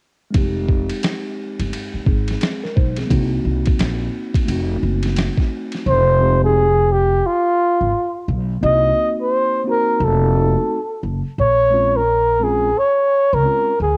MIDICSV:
0, 0, Header, 1, 6, 480
1, 0, Start_track
1, 0, Key_signature, -4, "minor"
1, 0, Tempo, 689655
1, 242, Time_signature, 4, 2, 24, 8
1, 9723, End_track
2, 0, Start_track
2, 0, Title_t, "Flugelhorn"
2, 0, Program_c, 0, 56
2, 4092, Note_on_c, 0, 72, 99
2, 4451, Note_off_c, 0, 72, 0
2, 4488, Note_on_c, 0, 68, 91
2, 4817, Note_on_c, 0, 67, 94
2, 4828, Note_off_c, 0, 68, 0
2, 5054, Note_on_c, 0, 65, 89
2, 5064, Note_off_c, 0, 67, 0
2, 5768, Note_off_c, 0, 65, 0
2, 6017, Note_on_c, 0, 75, 105
2, 6373, Note_off_c, 0, 75, 0
2, 6415, Note_on_c, 0, 72, 87
2, 6710, Note_off_c, 0, 72, 0
2, 6754, Note_on_c, 0, 70, 94
2, 6989, Note_on_c, 0, 69, 78
2, 6999, Note_off_c, 0, 70, 0
2, 7695, Note_off_c, 0, 69, 0
2, 7935, Note_on_c, 0, 73, 112
2, 8327, Note_on_c, 0, 70, 93
2, 8338, Note_off_c, 0, 73, 0
2, 8655, Note_on_c, 0, 68, 98
2, 8666, Note_off_c, 0, 70, 0
2, 8895, Note_on_c, 0, 73, 110
2, 8906, Note_off_c, 0, 68, 0
2, 9284, Note_on_c, 0, 70, 100
2, 9295, Note_off_c, 0, 73, 0
2, 9607, Note_off_c, 0, 70, 0
2, 9619, Note_on_c, 0, 68, 82
2, 9723, Note_off_c, 0, 68, 0
2, 9723, End_track
3, 0, Start_track
3, 0, Title_t, "Tine electric piano"
3, 0, Program_c, 1, 4
3, 213, Note_on_c, 1, 56, 69
3, 227, Note_on_c, 1, 60, 55
3, 243, Note_on_c, 1, 63, 55
3, 263, Note_on_c, 1, 67, 73
3, 1403, Note_off_c, 1, 56, 0
3, 1410, Note_off_c, 1, 60, 0
3, 1418, Note_off_c, 1, 63, 0
3, 1423, Note_on_c, 1, 56, 45
3, 1428, Note_off_c, 1, 67, 0
3, 1434, Note_on_c, 1, 60, 40
3, 1440, Note_on_c, 1, 63, 42
3, 1450, Note_on_c, 1, 68, 52
3, 1673, Note_off_c, 1, 68, 0
3, 1678, Note_off_c, 1, 60, 0
3, 1681, Note_off_c, 1, 63, 0
3, 1681, Note_on_c, 1, 68, 47
3, 1685, Note_on_c, 1, 60, 39
3, 1825, Note_off_c, 1, 68, 0
3, 1827, Note_off_c, 1, 60, 0
3, 1834, Note_on_c, 1, 70, 71
3, 1918, Note_off_c, 1, 70, 0
3, 1921, Note_on_c, 1, 72, 66
3, 1923, Note_on_c, 1, 63, 53
3, 2065, Note_off_c, 1, 72, 0
3, 2066, Note_off_c, 1, 63, 0
3, 2073, Note_on_c, 1, 68, 54
3, 2077, Note_on_c, 1, 60, 48
3, 2137, Note_on_c, 1, 58, 69
3, 2144, Note_off_c, 1, 60, 0
3, 2152, Note_off_c, 1, 56, 0
3, 2153, Note_on_c, 1, 60, 63
3, 2166, Note_on_c, 1, 63, 66
3, 2182, Note_on_c, 1, 66, 75
3, 2301, Note_off_c, 1, 68, 0
3, 3090, Note_off_c, 1, 58, 0
3, 3094, Note_on_c, 1, 57, 68
3, 3098, Note_off_c, 1, 60, 0
3, 3104, Note_off_c, 1, 63, 0
3, 3113, Note_off_c, 1, 66, 0
3, 3113, Note_on_c, 1, 60, 64
3, 3128, Note_on_c, 1, 63, 52
3, 3146, Note_on_c, 1, 66, 69
3, 4048, Note_off_c, 1, 57, 0
3, 4058, Note_off_c, 1, 60, 0
3, 4066, Note_off_c, 1, 63, 0
3, 4075, Note_off_c, 1, 66, 0
3, 4308, Note_on_c, 1, 56, 63
3, 4320, Note_on_c, 1, 60, 65
3, 4327, Note_on_c, 1, 63, 58
3, 4335, Note_on_c, 1, 67, 72
3, 4615, Note_off_c, 1, 56, 0
3, 4621, Note_off_c, 1, 60, 0
3, 4625, Note_off_c, 1, 63, 0
3, 4629, Note_off_c, 1, 67, 0
3, 5994, Note_on_c, 1, 58, 70
3, 6002, Note_on_c, 1, 60, 61
3, 6009, Note_on_c, 1, 63, 65
3, 6017, Note_on_c, 1, 66, 69
3, 6682, Note_off_c, 1, 58, 0
3, 6686, Note_off_c, 1, 60, 0
3, 6690, Note_off_c, 1, 63, 0
3, 6694, Note_off_c, 1, 66, 0
3, 6711, Note_on_c, 1, 58, 65
3, 6721, Note_on_c, 1, 60, 64
3, 6730, Note_on_c, 1, 63, 66
3, 6736, Note_on_c, 1, 66, 79
3, 7185, Note_on_c, 1, 57, 63
3, 7189, Note_off_c, 1, 60, 0
3, 7196, Note_off_c, 1, 63, 0
3, 7197, Note_on_c, 1, 60, 52
3, 7203, Note_off_c, 1, 66, 0
3, 7205, Note_on_c, 1, 63, 58
3, 7211, Note_on_c, 1, 66, 71
3, 7401, Note_off_c, 1, 58, 0
3, 7494, Note_off_c, 1, 57, 0
3, 7500, Note_off_c, 1, 60, 0
3, 7504, Note_off_c, 1, 63, 0
3, 7507, Note_off_c, 1, 66, 0
3, 8144, Note_on_c, 1, 56, 68
3, 8152, Note_on_c, 1, 60, 61
3, 8160, Note_on_c, 1, 61, 58
3, 8168, Note_on_c, 1, 65, 74
3, 8339, Note_off_c, 1, 56, 0
3, 8344, Note_off_c, 1, 60, 0
3, 8347, Note_off_c, 1, 61, 0
3, 8352, Note_off_c, 1, 65, 0
3, 8627, Note_on_c, 1, 56, 67
3, 8634, Note_on_c, 1, 60, 63
3, 8644, Note_on_c, 1, 61, 65
3, 8653, Note_on_c, 1, 65, 74
3, 8821, Note_off_c, 1, 56, 0
3, 8824, Note_off_c, 1, 60, 0
3, 8829, Note_off_c, 1, 61, 0
3, 8834, Note_off_c, 1, 65, 0
3, 9349, Note_on_c, 1, 56, 53
3, 9356, Note_on_c, 1, 60, 44
3, 9364, Note_on_c, 1, 61, 50
3, 9373, Note_on_c, 1, 65, 61
3, 9542, Note_off_c, 1, 56, 0
3, 9545, Note_off_c, 1, 60, 0
3, 9549, Note_off_c, 1, 61, 0
3, 9554, Note_off_c, 1, 65, 0
3, 9723, End_track
4, 0, Start_track
4, 0, Title_t, "Upright bass"
4, 0, Program_c, 2, 32
4, 242, Note_on_c, 2, 29, 81
4, 620, Note_off_c, 2, 29, 0
4, 1110, Note_on_c, 2, 31, 73
4, 1181, Note_off_c, 2, 31, 0
4, 1437, Note_on_c, 2, 32, 68
4, 1628, Note_off_c, 2, 32, 0
4, 1930, Note_on_c, 2, 35, 72
4, 2115, Note_off_c, 2, 35, 0
4, 2161, Note_on_c, 2, 36, 89
4, 2350, Note_off_c, 2, 36, 0
4, 2399, Note_on_c, 2, 36, 82
4, 2589, Note_off_c, 2, 36, 0
4, 2639, Note_on_c, 2, 34, 86
4, 2829, Note_off_c, 2, 34, 0
4, 3115, Note_on_c, 2, 29, 88
4, 3307, Note_off_c, 2, 29, 0
4, 3361, Note_on_c, 2, 30, 88
4, 3669, Note_off_c, 2, 30, 0
4, 4080, Note_on_c, 2, 29, 96
4, 5013, Note_off_c, 2, 29, 0
4, 5433, Note_on_c, 2, 32, 82
4, 5503, Note_off_c, 2, 32, 0
4, 5764, Note_on_c, 2, 35, 89
4, 5952, Note_off_c, 2, 35, 0
4, 6005, Note_on_c, 2, 36, 108
4, 6193, Note_off_c, 2, 36, 0
4, 6961, Note_on_c, 2, 29, 99
4, 7339, Note_off_c, 2, 29, 0
4, 7678, Note_on_c, 2, 30, 81
4, 7798, Note_off_c, 2, 30, 0
4, 7922, Note_on_c, 2, 34, 90
4, 8854, Note_off_c, 2, 34, 0
4, 9277, Note_on_c, 2, 37, 89
4, 9345, Note_off_c, 2, 37, 0
4, 9604, Note_on_c, 2, 38, 82
4, 9723, Note_off_c, 2, 38, 0
4, 9723, End_track
5, 0, Start_track
5, 0, Title_t, "Muted upright bass strokes"
5, 1350, Note_on_c, 9, 29, 51
5, 1419, Note_off_c, 9, 29, 0
5, 9723, End_track
6, 0, Start_track
6, 0, Title_t, "Drums"
6, 239, Note_on_c, 9, 51, 61
6, 240, Note_on_c, 9, 36, 107
6, 308, Note_off_c, 9, 51, 0
6, 310, Note_off_c, 9, 36, 0
6, 477, Note_on_c, 9, 36, 76
6, 547, Note_off_c, 9, 36, 0
6, 623, Note_on_c, 9, 51, 49
6, 692, Note_off_c, 9, 51, 0
6, 717, Note_on_c, 9, 44, 52
6, 717, Note_on_c, 9, 51, 70
6, 726, Note_on_c, 9, 38, 102
6, 787, Note_off_c, 9, 44, 0
6, 787, Note_off_c, 9, 51, 0
6, 796, Note_off_c, 9, 38, 0
6, 1110, Note_on_c, 9, 51, 56
6, 1180, Note_off_c, 9, 51, 0
6, 1205, Note_on_c, 9, 51, 62
6, 1274, Note_off_c, 9, 51, 0
6, 1437, Note_on_c, 9, 36, 84
6, 1507, Note_off_c, 9, 36, 0
6, 1586, Note_on_c, 9, 51, 55
6, 1607, Note_on_c, 9, 38, 33
6, 1655, Note_off_c, 9, 51, 0
6, 1676, Note_off_c, 9, 38, 0
6, 1678, Note_on_c, 9, 44, 44
6, 1678, Note_on_c, 9, 51, 58
6, 1693, Note_on_c, 9, 38, 99
6, 1748, Note_off_c, 9, 44, 0
6, 1748, Note_off_c, 9, 51, 0
6, 1762, Note_off_c, 9, 38, 0
6, 1844, Note_on_c, 9, 38, 31
6, 1913, Note_off_c, 9, 38, 0
6, 1927, Note_on_c, 9, 36, 78
6, 1997, Note_off_c, 9, 36, 0
6, 2063, Note_on_c, 9, 51, 53
6, 2082, Note_on_c, 9, 38, 31
6, 2133, Note_off_c, 9, 51, 0
6, 2152, Note_off_c, 9, 38, 0
6, 2160, Note_on_c, 9, 36, 99
6, 2162, Note_on_c, 9, 51, 64
6, 2230, Note_off_c, 9, 36, 0
6, 2232, Note_off_c, 9, 51, 0
6, 2544, Note_on_c, 9, 51, 52
6, 2556, Note_on_c, 9, 36, 93
6, 2614, Note_off_c, 9, 51, 0
6, 2625, Note_off_c, 9, 36, 0
6, 2639, Note_on_c, 9, 44, 51
6, 2639, Note_on_c, 9, 51, 62
6, 2648, Note_on_c, 9, 38, 94
6, 2709, Note_off_c, 9, 44, 0
6, 2709, Note_off_c, 9, 51, 0
6, 2718, Note_off_c, 9, 38, 0
6, 3024, Note_on_c, 9, 36, 96
6, 3030, Note_on_c, 9, 51, 60
6, 3093, Note_off_c, 9, 36, 0
6, 3100, Note_off_c, 9, 51, 0
6, 3121, Note_on_c, 9, 51, 67
6, 3190, Note_off_c, 9, 51, 0
6, 3499, Note_on_c, 9, 51, 58
6, 3520, Note_on_c, 9, 38, 35
6, 3569, Note_off_c, 9, 51, 0
6, 3589, Note_off_c, 9, 38, 0
6, 3594, Note_on_c, 9, 44, 47
6, 3594, Note_on_c, 9, 51, 65
6, 3609, Note_on_c, 9, 38, 86
6, 3664, Note_off_c, 9, 44, 0
6, 3664, Note_off_c, 9, 51, 0
6, 3678, Note_off_c, 9, 38, 0
6, 3741, Note_on_c, 9, 36, 80
6, 3759, Note_on_c, 9, 38, 33
6, 3811, Note_off_c, 9, 36, 0
6, 3828, Note_off_c, 9, 38, 0
6, 3980, Note_on_c, 9, 51, 49
6, 3999, Note_on_c, 9, 38, 30
6, 4050, Note_off_c, 9, 51, 0
6, 4069, Note_off_c, 9, 38, 0
6, 9723, End_track
0, 0, End_of_file